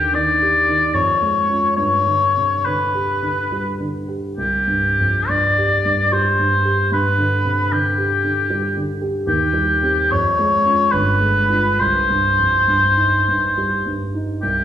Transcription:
0.00 0.90 D#2 soft
0.00 0.14 D3 soft
0.00 0.14 D#3 soft
0.00 0.16 G4 medium
0.14 0.57 D#3 soft
0.14 0.96 D5 medium
0.42 0.84 G4 soft
0.69 0.95 D#3 soft
0.94 1.74 F2 soft
0.94 1.76 C#5 medium
1.22 1.66 G#3 soft
1.50 1.75 C#4 soft
1.50 1.75 F4 soft
1.77 4.33 G2 soft
1.77 2.67 C#5 medium
2.07 2.53 D3 soft
2.37 2.65 C3 soft
2.65 3.12 D3 soft
2.65 3.94 B4 soft
2.95 3.40 G4 soft
3.22 3.68 D3 soft
3.52 3.97 G3 soft
3.80 4.26 D3 soft
4.08 4.37 G4 soft
4.37 6.89 C2 soft
4.37 5.30 G4 medium
4.67 5.18 G2 soft
4.99 5.30 F2 soft
5.29 5.74 G2 soft
5.29 6.14 D5 medium
5.58 6.01 G4 soft
5.85 6.28 G2 soft
6.12 6.55 G3 soft
6.12 6.92 C5 soft
6.39 6.82 G2 soft
6.65 6.92 G4 soft
6.92 9.22 G2 soft
6.92 7.74 B4 medium
7.18 7.61 D3 soft
7.45 7.72 C3 soft
7.72 8.14 D3 soft
7.72 8.89 G4 medium
7.98 8.40 G4 soft
8.24 8.65 D3 soft
8.50 8.91 G3 soft
8.77 9.17 D3 soft
9.01 9.27 G4 soft
9.27 10.09 D#2 soft
9.27 10.13 G4 medium
9.53 10.00 G3 soft
9.83 10.08 C4 soft
9.83 10.09 G4 soft
10.12 10.90 F2 soft
10.12 10.93 C#5 medium
10.39 10.81 G#3 soft
10.65 10.90 C#4 soft
10.65 10.90 F4 soft
10.92 11.77 G1 soft
10.92 11.81 B4 medium
11.21 11.67 G#3 soft
11.50 11.76 D4 soft
11.50 11.76 F4 soft
11.79 14.38 C2 soft
11.79 14.00 C5 medium
12.10 12.56 G2 soft
12.39 12.67 F2 soft
12.68 13.15 G2 soft
12.97 13.45 D#4 soft
13.28 13.74 G2 soft
13.58 14.03 G3 soft
13.86 14.31 G2 soft
14.14 14.42 D#4 soft
14.42 14.64 C2 soft
14.42 14.64 G4 medium

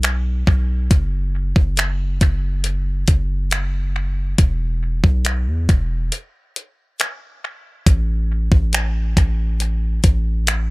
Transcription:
0.00 0.44 B1 loud
0.00 closed hi-hat medium
0.04 finger snap loud
0.47 0.89 B1 medium
0.47 kick loud
0.91 1.53 F#1 loud
0.91 kick loud
0.91 closed hi-hat medium
1.56 2.19 F#1 loud
1.56 kick medium
1.77 finger snap medium
1.77 closed hi-hat medium
2.21 3.05 F#1 loud
2.21 kick medium
2.21 closed hi-hat medium
2.64 closed hi-hat medium
3.08 4.34 F#1 loud
3.08 kick medium
3.08 closed hi-hat medium
3.51 finger snap loud
3.51 closed hi-hat medium
4.38 5.01 E1 loud
4.38 kick loud
4.38 closed hi-hat medium
5.04 5.48 B1 loud
5.04 kick medium
5.25 finger snap loud
5.25 closed hi-hat medium
5.47 5.68 E2 medium
5.69 6.11 E1 loud
5.69 kick medium
5.69 closed hi-hat medium
6.12 closed hi-hat medium
6.56 closed hi-hat medium
7.00 finger snap loud
7.00 closed hi-hat medium
7.86 8.49 A1 loud
7.86 kick loud
7.86 closed hi-hat medium
8.52 9.14 A1 loud
8.52 kick medium
8.73 finger snap loud
8.73 closed hi-hat medium
9.17 10.00 A1 loud
9.17 kick medium
9.17 closed hi-hat medium
9.60 closed hi-hat medium
10.04 10.70 A1 medium
10.04 kick medium
10.04 closed hi-hat medium
10.47 finger snap loud
10.47 closed hi-hat medium

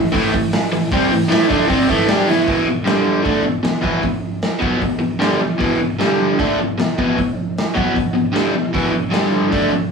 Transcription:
0.00 0.10 E3 medium
0.12 0.32 A2 medium
0.12 0.32 E3 loud
0.12 0.33 A3 loud
0.12 kick medium
0.12 open hi-hat loud
0.34 0.49 A2 medium
0.34 0.49 E3 medium
0.34 kick medium
0.34 open hi-hat medium
0.52 snare loud
0.52 open hi-hat medium
0.72 0.88 A2 medium
0.72 0.88 E3 medium
0.72 open hi-hat medium
0.91 1.10 C3 loud
0.91 1.10 G3 loud
0.91 1.12 C4 loud
0.91 kick loud
0.91 open hi-hat medium
1.11 1.27 A2 medium
1.11 1.27 E3 medium
1.11 open hi-hat medium
1.22 snare soft
1.29 1.48 A2 medium
1.29 1.49 E3 medium
1.29 1.48 A3 loud
1.29 snare loud
1.29 open hi-hat medium
1.49 1.68 D3 medium
1.49 1.69 A3 medium
1.49 1.68 D4 medium
1.49 kick medium
1.49 open hi-hat medium
1.68 1.88 C3 medium
1.68 1.88 G3 medium
1.68 1.88 C4 loud
1.68 kick loud
1.68 open hi-hat medium
1.89 2.08 A2 medium
1.89 2.08 E3 loud
1.89 2.08 A3 loud
1.89 kick medium
1.89 open hi-hat medium
2.08 2.27 G3 medium
2.08 2.28 D4 loud
2.08 2.28 G4 loud
2.08 snare loud
2.08 open hi-hat medium
2.28 2.47 E3 loud
2.28 2.47 B3 loud
2.28 2.48 E4 loud
2.28 open hi-hat medium
2.48 2.67 E2 medium
2.48 2.66 B2 medium
2.48 2.67 E3 medium
2.48 kick loud
2.48 open hi-hat medium
2.67 2.83 E2 medium
2.67 2.83 B2 medium
2.84 3.24 G2 medium
2.84 3.22 D3 medium
2.84 3.24 G3 medium
2.84 snare loud
2.84 open hi-hat medium
3.23 3.42 D3 medium
3.23 3.44 A3 medium
3.23 3.44 D4 loud
3.23 kick loud
3.23 open hi-hat medium
3.42 3.60 E2 medium
3.42 3.59 B2 medium
3.63 3.80 E2 medium
3.63 3.80 B2 medium
3.63 snare loud
3.63 open hi-hat medium
3.81 4.01 E2 medium
3.81 4.01 B2 medium
3.81 4.02 E3 loud
3.81 kick medium
4.02 4.19 E2 medium
4.02 4.19 B2 medium
4.02 kick medium
4.02 open hi-hat medium
4.42 snare loud
4.42 open hi-hat soft
4.60 4.80 B2 medium
4.60 4.81 F#3 medium
4.60 4.81 B3 medium
4.60 kick loud
4.81 4.97 E2 medium
4.81 4.97 B2 medium
4.81 kick medium
4.81 open hi-hat medium
4.99 5.16 E2 medium
4.99 5.16 B2 medium
5.19 5.39 G2 medium
5.19 5.40 D3 medium
5.19 5.40 G3 medium
5.19 snare loud
5.19 open hi-hat medium
5.41 5.57 E2 medium
5.41 5.57 B2 medium
5.58 5.78 E2 medium
5.58 5.78 B2 medium
5.58 5.80 E3 medium
5.58 kick loud
5.58 open hi-hat medium
5.79 5.95 E2 medium
5.79 5.95 B2 medium
5.99 6.38 G2 medium
5.99 6.38 D3 medium
5.99 6.39 G3 medium
5.99 snare loud
5.99 open hi-hat medium
6.39 6.58 D3 medium
6.39 6.58 A3 medium
6.39 6.59 D4 medium
6.39 kick loud
6.39 open hi-hat medium
6.59 6.75 E2 medium
6.59 6.75 B2 medium
6.78 6.94 E2 medium
6.78 6.94 B2 medium
6.78 snare loud
6.78 open hi-hat medium
6.98 7.16 E2 medium
6.98 7.17 B2 medium
6.98 7.18 E3 medium
6.98 kick loud
7.17 7.33 E2 medium
7.17 7.34 B2 medium
7.17 kick medium
7.17 open hi-hat medium
7.58 snare loud
7.58 open hi-hat soft
7.75 7.93 B2 medium
7.75 7.95 F#3 medium
7.75 7.96 B3 medium
7.75 kick loud
7.94 8.11 E2 medium
7.94 8.11 B2 medium
7.94 kick medium
7.94 open hi-hat medium
8.14 8.31 E2 medium
8.14 8.31 B2 medium
8.33 8.53 G2 medium
8.33 8.54 D3 medium
8.33 8.54 G3 medium
8.33 snare loud
8.33 open hi-hat medium
8.55 8.71 E2 medium
8.55 8.71 B2 medium
8.74 8.91 E2 loud
8.74 8.91 B2 medium
8.74 8.94 E3 medium
8.74 kick loud
8.74 open hi-hat soft
8.92 9.09 E2 medium
8.92 9.09 B2 medium
9.11 9.51 G2 medium
9.11 9.50 D3 medium
9.11 9.52 G3 loud
9.11 snare loud
9.11 open hi-hat medium
9.52 9.71 D3 medium
9.52 9.72 A3 medium
9.52 9.72 D4 loud
9.52 kick loud
9.52 open hi-hat medium
9.71 9.88 E2 medium
9.71 9.88 B2 medium

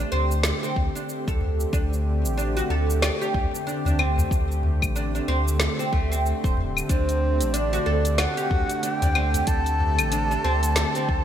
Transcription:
0.00 11.24 D3 medium
0.00 11.24 A3 medium
0.00 11.24 C4 medium
0.00 0.11 D4 medium
0.00 6.89 G4 medium
0.12 0.52 D2 loud
0.12 0.23 C4 loud
0.31 shaker medium
0.43 snare medium
0.43 shaker medium
0.63 0.76 C4 medium
0.63 shaker soft
0.76 0.89 D2 loud
0.76 kick loud
0.95 1.03 D4 medium
0.95 shaker medium
1.09 shaker medium
1.27 1.65 D2 medium
1.27 1.72 A4 medium
1.27 kick loud
1.27 shaker soft
1.41 udu medium
1.60 shaker medium
1.73 2.26 D2 loud
1.73 1.91 D4 medium
1.73 kick loud
1.73 shaker medium
1.93 shaker soft
2.25 2.62 A1 medium
2.25 shaker medium
2.38 2.56 D4 medium
2.38 shaker medium
2.57 2.69 F#4 loud
2.57 shaker soft
2.70 3.10 D2 loud
2.70 2.88 A4 medium
2.90 shaker medium
3.02 3.20 D5 medium
3.02 snare medium
3.02 claves medium
3.02 shaker medium
3.21 3.66 G4 medium
3.21 shaker soft
3.34 3.47 D2 loud
3.34 kick loud
3.34 udu medium
3.55 shaker medium
3.67 3.84 D4 medium
3.67 shaker medium
3.85 4.24 D2 medium
3.85 3.99 D4 medium
3.85 udu medium
3.85 shaker soft
3.99 4.10 C4 medium
3.99 claves medium
4.18 udu loud
4.18 shaker medium
4.31 4.84 D2 loud
4.31 kick loud
4.31 shaker medium
4.51 shaker soft
4.63 udu medium
4.82 5.20 A1 medium
4.82 kick medium
4.82 claves medium
4.82 shaker medium
4.96 5.13 D4 medium
4.96 shaker medium
5.15 5.27 D4 medium
5.15 shaker soft
5.28 5.68 D2 loud
5.28 5.39 C4 loud
5.48 shaker medium
5.60 snare medium
5.60 shaker medium
5.79 5.92 C4 medium
5.79 shaker soft
5.93 6.33 D2 loud
5.93 6.10 A3 medium
5.93 kick loud
6.12 6.19 C4 medium
6.12 shaker medium
6.26 shaker medium
6.44 6.82 D1 medium
6.44 6.56 C5 medium
6.44 kick loud
6.44 shaker soft
6.57 udu medium
6.77 claves medium
6.77 shaker medium
6.89 7.43 D2 loud
6.89 7.07 D4 medium
6.89 11.24 D4 medium
6.89 11.24 G4 medium
6.89 7.55 C5 loud
6.89 kick loud
6.89 closed hi-hat soft
6.89 shaker medium
7.09 closed hi-hat soft
7.09 shaker soft
7.41 7.79 A1 medium
7.41 closed hi-hat soft
7.41 shaker medium
7.53 7.72 D4 medium
7.53 8.18 D5 loud
7.53 closed hi-hat medium
7.53 shaker medium
7.73 7.85 F#4 medium
7.73 shaker soft
7.86 8.27 D2 medium
7.86 8.04 A4 medium
8.05 closed hi-hat soft
8.05 shaker medium
8.18 8.37 D5 medium
8.18 8.83 F#5 loud
8.18 snare medium
8.18 closed hi-hat medium
8.18 claves medium
8.18 shaker medium
8.37 8.81 G4 medium
8.37 closed hi-hat soft
8.37 shaker soft
8.51 8.63 D2 loud
8.51 kick loud
8.51 udu medium
8.70 closed hi-hat soft
8.70 shaker medium
8.83 9.00 D4 medium
8.83 8.94 F#5 loud
8.83 closed hi-hat medium
8.83 shaker medium
8.94 9.49 G5 loud
9.02 9.40 D2 medium
9.02 9.15 D4 medium
9.02 closed hi-hat soft
9.02 udu loud
9.02 shaker soft
9.15 9.26 C4 medium
9.15 claves medium
9.34 closed hi-hat soft
9.34 udu medium
9.34 shaker medium
9.47 10.00 D2 medium
9.47 11.24 A5 loud
9.47 kick loud
9.47 closed hi-hat medium
9.47 shaker medium
9.66 closed hi-hat soft
9.66 shaker soft
9.80 udu medium
9.99 10.37 A1 medium
9.99 closed hi-hat soft
9.99 claves medium
9.99 shaker medium
10.12 10.29 D4 medium
10.12 closed hi-hat medium
10.12 shaker medium
10.31 10.44 D4 medium
10.31 shaker soft
10.44 10.85 D2 loud
10.44 10.55 C4 loud
10.63 closed hi-hat soft
10.63 shaker medium
10.76 snare medium
10.76 closed hi-hat medium
10.76 shaker medium
10.95 11.08 C4 medium
10.95 closed hi-hat soft
10.95 shaker soft
11.09 11.21 D2 loud
11.09 kick loud

